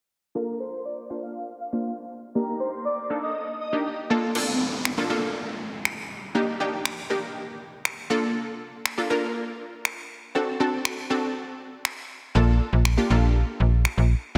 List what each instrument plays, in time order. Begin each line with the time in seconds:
0.35 synth pluck A#3 D4 F4 A4, digital synth lead A#4
0.60 digital synth lead C5
0.85 digital synth lead D5
1.10 synth pluck A#3 D4 F4 C5
1.23 digital synth lead F5
1.60 digital synth lead F5
1.73 synth pluck A#3 D4 F4 C5
2.35 synth pluck A#3 D4 D#4 G4, digital synth lead A#4
2.60 digital synth lead C5
2.85 digital synth lead D5
3.10 synth pluck A#3 D4 D#4 A4
3.23 digital synth lead D#5
3.60 digital synth lead D#5
3.73 synth pluck A#3 D4 D#4 G4
4.10 synth pluck A#3 D4 F4 A4
4.35 synth pluck A#3 D4 F4 A4, crash, downlifter
4.85 finger snap
4.97 synth pluck A#3 D4 F4 A4
5.10 synth pluck A#3 D4 F4 A4
5.85 finger snap
6.35 synth pluck A#3 D4 D#4 G4
6.60 synth pluck A#3 D4 D#4 G4
6.85 finger snap
7.10 synth pluck A#3 D4 D#4 G4
7.85 finger snap
8.10 synth pluck A#3 D4 F4 A4
8.86 finger snap
8.98 synth pluck A#3 D4 F4 A4
9.10 synth pluck A#3 D4 F4 A#4
9.85 finger snap
10.35 synth pluck C4 D4 F#4 A4
10.60 synth pluck C4 D4 F#4 A4
10.85 finger snap
11.10 synth pluck C4 D4 F#4 A4
11.85 finger snap
12.35 fm bass A#1, synth pluck A#3 D4 F4 A4
12.73 fm bass A#1
12.85 finger snap
12.97 synth pluck A#3 D4 F4 G4
13.10 fm bass A#1, synth pluck A#3 D4 F4 A4
13.60 fm bass A#1
13.85 finger snap
13.97 fm bass A#1